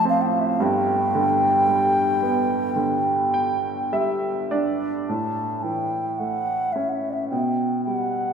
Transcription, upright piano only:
0.00 0.56 A1 medium
0.00 0.56 A2 medium
0.00 0.56 F3 medium
0.00 0.57 A3 medium
0.05 0.58 C4 medium
0.60 5.04 G1 medium
0.60 5.04 G2 medium
1.15 2.74 D3 medium
1.68 3.87 G3 medium
2.22 4.47 B3 soft
2.76 5.04 D3 soft
3.34 3.88 G5 medium
3.92 5.05 G3 medium
3.92 4.47 E5 medium
4.51 5.07 D4 soft
4.51 5.04 D5 medium
5.09 7.28 A2 soft
5.64 7.27 E3 soft
6.20 7.28 A3 soft
6.76 7.30 C#4 soft
7.32 8.33 B2 soft
7.87 8.33 G3 soft

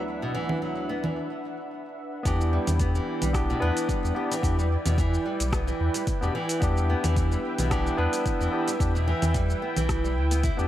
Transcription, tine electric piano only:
0.00 1.16 D2 medium
0.00 1.16 F#3 medium
0.00 1.17 A3 medium
0.00 1.17 B3 medium
0.00 1.18 E4 medium
2.23 3.31 B3 medium
2.23 3.32 D4 medium
2.27 3.33 G4 loud
3.33 3.58 B3 medium
3.33 3.59 D4 medium
3.33 3.59 G4 loud
3.60 4.13 B3 medium
3.60 4.13 D4 medium
3.60 4.14 B4 loud
4.15 4.34 B3 medium
4.15 4.34 D4 medium
4.15 4.35 G4 medium
4.42 4.55 B3 medium
4.42 4.55 D4 medium
4.42 4.56 G4 medium
6.21 6.32 B3 medium
6.21 6.32 D4 medium
6.21 6.33 G4 loud
6.60 7.67 B3 medium
6.60 7.68 D4 medium
6.60 7.69 G4 loud
7.70 7.95 B3 medium
7.70 7.96 D4 medium
7.70 7.96 G4 loud
7.97 8.49 B3 medium
7.97 8.50 D4 medium
7.97 8.50 B4 loud
8.51 8.70 B3 medium
8.51 8.71 D4 medium
8.51 8.71 G4 medium
8.79 8.91 B3 medium
8.79 8.92 D4 medium
8.79 8.92 G4 medium
10.57 10.68 B3 medium
10.57 10.68 D4 medium
10.57 10.68 G4 medium

